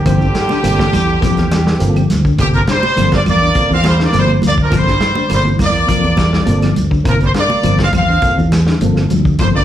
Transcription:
Already playing: tenor saxophone D3, horn section G4
0.05 fingered electric bass G1, clean electric guitar F3, tonewheel organ A#3 C4 F4 C5, kick, closed hi-hat, high conga, claves, shekere
0.21 clean electric guitar D3, shekere
0.35 snare, closed hi-hat, low conga, shekere
0.49 clean electric guitar D3, snare, high conga, shekere
0.63 fingered electric bass G1, tonewheel organ A#3 C4 F4 A4, closed hi-hat, high conga, low conga, claves, shekere
0.78 clean electric guitar E3, kick, snare, high conga, shekere
0.93 fingered electric bass E2, clean electric guitar E3, kick, closed hi-hat, low conga, claves, shekere
1.09 shekere
1.21 clean electric guitar F3, tonewheel organ A#3 C4 F4 A4, kick, snare, closed hi-hat, high conga, shekere
1.37 fingered electric bass E2, snare, closed hi-hat, shekere
1.51 clean electric guitar G3, snare, closed hi-hat, high conga, claves, shekere
1.67 clean electric guitar G3, snare, shekere
1.79 fingered electric bass G1, tonewheel organ A#3 C4 F4 A4, closed hi-hat, high conga, shekere
1.96 clean electric guitar F3, closed hi-hat, claves, shekere
2.10 fingered electric bass D2, snare, closed hi-hat, high conga, low conga, shekere
2.25 clean electric guitar D3, kick, shekere
2.38 fingered electric bass G1, clean electric guitar C3, tenor saxophone D3, tonewheel organ A#3 C4 F4 A4, horn section G4, kick, closed hi-hat, high conga, claves, shekere
2.53 tenor saxophone F3, horn section A#4, closed hi-hat, shekere
2.67 clean electric guitar D3, tenor saxophone G3, horn section C5, snare, closed hi-hat, shekere
2.83 high conga, shekere
2.96 fingered electric bass G1, clean electric guitar F3, tonewheel organ A#3 C4 F4 A4, closed hi-hat, high conga, low conga, claves, shekere
3.12 tenor saxophone A#3, horn section D5, kick, snare, closed hi-hat, high conga, shekere
3.26 fingered electric bass E2, clean electric guitar F3, tenor saxophone A#3, horn section D5, kick, closed hi-hat, low conga, claves, shekere
3.42 clean electric guitar D3, shekere
3.55 tonewheel organ A#3 C4 F4 A4, kick, closed hi-hat, high conga, shekere
3.70 fingered electric bass E2, clean electric guitar E3, tenor saxophone C4, horn section F5, shekere
3.84 horn section C5, snare, closed hi-hat, high conga, claves, shekere
3.88 tenor saxophone G3
4.00 clean electric guitar D3, tenor saxophone A#3, snare, shekere
4.06 horn section D5
4.13 fingered electric bass G1, clean electric guitar F3, tonewheel organ A#3 C4 F4 A4, closed hi-hat, high conga, shekere
4.18 tenor saxophone G3, horn section C5
4.28 high conga, claves, shekere
4.42 fingered electric bass D2, clean electric guitar F3, closed hi-hat, high conga, low conga, shekere
4.47 tenor saxophone A#3, horn section D5
4.58 kick, shekere
4.62 tenor saxophone F3, horn section A#4
4.70 fingered electric bass G1, clean electric guitar F3, tonewheel organ A#3 C4 F4 A4, kick, closed hi-hat, high conga, claves, shekere
4.76 tenor saxophone G3, horn section C5
4.87 clean electric guitar D3, snare, shekere
5.00 snare, closed hi-hat, low conga, shekere
5.15 clean electric guitar D3, high conga, shekere
5.29 fingered electric bass G1, tonewheel organ A#3 C4 F4 A4, closed hi-hat, high conga, low conga, claves, shekere
5.33 tenor saxophone G3, horn section C5
5.45 clean electric guitar E3, high conga, shekere
5.59 fingered electric bass E2, clean electric guitar E3, tenor saxophone A#3, kick, open hi-hat, low conga, claves, shekere
5.64 horn section D5
5.77 shekere
5.87 clean electric guitar F3, tonewheel organ A#3 C4 F4 A4, kick, closed hi-hat, high conga, shekere
6.04 fingered electric bass E2, closed hi-hat, shekere
6.17 clean electric guitar G3, kick, snare, closed hi-hat, high conga, claves, shekere
6.33 clean electric guitar G3, snare, shekere
6.46 fingered electric bass G1, tonewheel organ A#3 C4 F4 A4, closed hi-hat, high conga, shekere
6.62 clean electric guitar F3, snare, closed hi-hat, claves, shekere
6.76 fingered electric bass D2, closed hi-hat, low conga, shekere
6.91 clean electric guitar D3, kick, shekere
7.04 fingered electric bass G1, clean electric guitar C3, tenor saxophone F3, tonewheel organ A#3 C4 F4 A#4, kick, closed hi-hat, claves, shekere
7.08 horn section A#4
7.20 tenor saxophone G3, closed hi-hat, shekere
7.25 horn section C5
7.34 clean electric guitar D3, tenor saxophone A#3, snare, closed hi-hat, shekere
7.39 horn section D5
7.50 high conga, shekere
7.63 fingered electric bass G1, clean electric guitar F3, tonewheel organ A#3 C4 F4 C5, closed hi-hat, high conga, low conga, claves, shekere
7.78 kick, snare, closed hi-hat, high conga, shekere
7.82 tenor saxophone C4, horn section F5
7.93 fingered electric bass E2, clean electric guitar F3, tenor saxophone C4, kick, closed hi-hat, low conga, claves, shekere
7.97 horn section F5
8.09 clean electric guitar D3, shekere
8.22 tonewheel organ A#3 C4 F4 A4, kick, closed hi-hat, high conga, shekere
8.38 fingered electric bass E2, clean electric guitar E3, shekere
8.52 snare, closed hi-hat, high conga, claves, shekere
8.67 clean electric guitar D3, snare, shekere
8.81 fingered electric bass G1, clean electric guitar F3, tonewheel organ A#3 C4 F4 A4, closed hi-hat, high conga, shekere
8.96 snare, claves, shekere
9.10 fingered electric bass D2, clean electric guitar F3, closed hi-hat, high conga, low conga, shekere
9.25 kick, shekere
9.39 fingered electric bass G1, clean electric guitar F3, tenor saxophone G3, tonewheel organ A#3 C4 F4 A4, horn section C5, kick, closed hi-hat, high conga, claves, shekere
9.55 clean electric guitar D3, tenor saxophone A#3, horn section D5, shekere

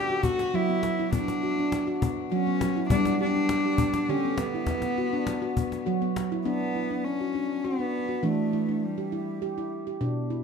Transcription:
Already playing: handpan B3, cello G4
0.10 handpan F#4
0.23 handpan B3, cello F#4, cajon bass
0.39 cajon slap
0.54 handpan F#3 F#4, cello E4, cajon slap
0.69 handpan B3
0.83 cajon slap
0.99 handpan E4
1.13 handpan B3, cello D4, cajon bass
1.28 cajon slap
1.43 handpan F#4
1.59 handpan D4
1.72 cajon slap
1.87 handpan F#4
2.02 handpan B3, cajon bass
2.32 handpan F#3 F#4, cello C#4, cajon slap
2.47 handpan B3
2.61 cajon slap
2.77 handpan E4
2.90 handpan G3 B3, cello D4, cajon bass
3.05 cajon slap
3.21 cello D4, handpan G4
3.36 handpan D4
3.49 cajon slap
3.66 handpan G4
3.78 handpan B3, cajon bass
3.94 cajon slap
4.08 handpan D3 G4, cello C#4, cajon slap
4.25 handpan B3
4.38 cello B3, cajon slap
4.54 handpan E4
4.67 handpan B3, cajon bass, cajon slap
4.82 cajon slap
4.97 handpan F#4, cajon slap
5.13 handpan D4
5.27 cajon slap
5.42 handpan F#4
5.57 handpan B3, cajon bass
5.72 cajon slap
5.86 handpan F#3 F#4
6.02 handpan B3, cajon slap
6.16 cajon slap
6.31 handpan E4, cajon slap
6.45 handpan B3 D4, cello B3
6.76 handpan E4
6.91 handpan D4
7.04 cello C#4
7.21 handpan F#4
7.35 handpan D4
7.65 cello B3, handpan F#4
7.79 handpan D4
8.09 handpan F#4
8.23 handpan E3 D4, cello A3
8.53 handpan E4
8.69 handpan D4
8.84 cello G3
8.98 handpan G4
9.12 handpan E4
9.42 handpan G4
9.58 handpan E4
9.87 handpan G4
10.01 handpan B2 D4
10.30 handpan E4

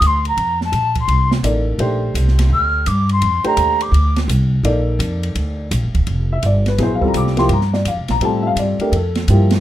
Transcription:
0.01 upright bass D2, hi-hat pedal, ride
0.06 flute C6
0.25 flute A#5, ride
0.37 upright bass F2, ride
0.61 flute A5, snare
0.72 upright bass A#1, hi-hat pedal, ride
0.95 flute C6, kick, ride
1.08 upright bass C2, ride
1.31 snare
1.43 upright bass A1, upright piano A#3 D#4 A4 D5, hi-hat pedal, ride
1.78 upright bass A#1, upright piano A3 D4 G4 C5, ride
2.14 upright bass C2, hi-hat pedal, ride
2.28 snare
2.39 snare, ride
2.50 upright bass D2, flute F6
2.86 upright bass G2, flute D6, hi-hat pedal, ride
3.09 flute C6, ride
3.22 upright bass F2, ride
3.44 upright piano A3 D4 G4 C5, flute A#5, muted upright bass stroke, ride
3.57 upright bass D#2, hi-hat pedal, ride
3.81 flute D6, ride
3.92 upright bass D2, ride
4.16 snare, ride
4.28 upright bass C2, hi-hat pedal, ride
4.63 upright bass A#1, upright piano A#3 D#4 A4 D5, ride
4.99 upright bass F2, hi-hat pedal, ride
5.23 ride
5.35 upright bass D2, ride
5.71 upright bass A#1, hi-hat pedal, ride
5.83 upright bass F1
5.95 upright bass D1, kick, ride
6.07 upright bass F1, ride
6.32 upright piano E5
6.43 upright bass G1, upright piano D5, hi-hat pedal, ride
6.66 upright piano B4, snare, ride
6.78 upright bass A#1, upright piano F#3 B3 E4 G#4, snare, ride
6.83 upright piano C5
6.95 upright piano F5
7.01 upright piano G3 C4 F4 A4, muted upright bass stroke, kick
7.08 upright piano A#5
7.14 upright bass C2, upright piano D6, hi-hat pedal, ride
7.27 snare
7.37 upright piano F3 A#3 E4 G4 C6, snare, ride
7.49 upright bass G2, ride
7.53 upright piano A#5
7.61 snare
7.73 upright piano D5, snare
7.85 upright bass F2, upright piano F5, hi-hat pedal, ride
7.97 upright bass C2
8.08 upright bass A#1, upright piano A#5, snare, ride
8.20 upright bass A2, upright piano G3 C4 F4 A4, ride
8.25 upright piano A5
8.43 upright piano E5
8.47 upright piano F5
8.55 upright bass G2, upright piano D5, hi-hat pedal, ride
8.79 upright piano A3 D4 G4 A#4, muted upright bass stroke, ride
8.92 upright bass F2, ride
8.96 upright piano A4
9.15 snare, ride
9.28 upright bass G2, upright piano F3 A#3 E4 G4, hi-hat pedal, ride
9.51 snare, ride

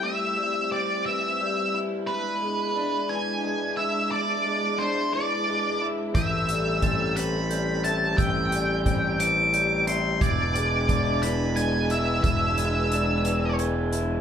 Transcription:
Already playing: clean electric guitar E3 G3 C4 E4, string section G3 C4 E4
0.03 clean electric guitar A2, lead electric guitar E5
0.38 clean electric guitar G3
0.72 clean electric guitar C4, lead electric guitar D5
1.06 clean electric guitar E3, lead electric guitar E5
1.41 clean electric guitar G3
1.74 clean electric guitar E4
2.07 clean electric guitar E2, string section G#3 D4, lead electric guitar B4
2.42 clean electric guitar G#3
2.75 clean electric guitar D4
3.09 clean electric guitar E3, lead electric guitar G#5
3.44 clean electric guitar G#3
3.77 clean electric guitar E4, lead electric guitar E5
4.11 clean electric guitar E2, lead electric guitar D5
4.46 clean electric guitar G#3
4.79 clean electric guitar D4, lead electric guitar C5
5.13 clean electric guitar E3, lead electric guitar D5
5.48 clean electric guitar G#3
5.81 clean electric guitar E4
6.15 fingered electric bass A1, clean electric guitar A2, string section G3 C4 A4, lead electric guitar E5, glockenspiel G6, kick, closed hi-hat
6.49 clean electric guitar G3, closed hi-hat
6.82 clean electric guitar C4, glockenspiel A6, kick, closed hi-hat
7.17 clean electric guitar E3, lead electric guitar B5, closed hi-hat
7.50 clean electric guitar G3, glockenspiel G6, closed hi-hat
7.84 clean electric guitar E4, lead electric guitar A5, closed hi-hat
8.18 fingered electric bass A1, clean electric guitar A2, string section G4, lead electric guitar G5, glockenspiel E6, kick, closed hi-hat
8.52 clean electric guitar G3, glockenspiel G6, closed hi-hat
8.86 clean electric guitar C4, kick, closed hi-hat
9.20 clean electric guitar E3, lead electric guitar D6, closed hi-hat
9.54 clean electric guitar G3, glockenspiel G6, closed hi-hat
9.87 clean electric guitar E4, lead electric guitar C6, closed hi-hat
10.21 fingered electric bass E1, clean electric guitar E2, string section G#3 D4 E4 B4, lead electric guitar D5, glockenspiel G#6, kick, closed hi-hat
10.55 clean electric guitar G#3, closed hi-hat
10.89 clean electric guitar D4, glockenspiel A6, kick, closed hi-hat
11.23 clean electric guitar E3, lead electric guitar B5, closed hi-hat
11.56 clean electric guitar G#3, lead electric guitar G#5, glockenspiel G#6, closed hi-hat
11.90 clean electric guitar E4, lead electric guitar E5, closed hi-hat
12.23 fingered electric bass E1, clean electric guitar E2, lead electric guitar E5, glockenspiel E6, kick, closed hi-hat
12.58 clean electric guitar G#3, glockenspiel G#6, closed hi-hat
12.92 clean electric guitar D4, closed hi-hat
13.25 clean electric guitar E3, closed hi-hat
13.59 clean electric guitar G#3, glockenspiel G#6, closed hi-hat
13.93 clean electric guitar E4, closed hi-hat

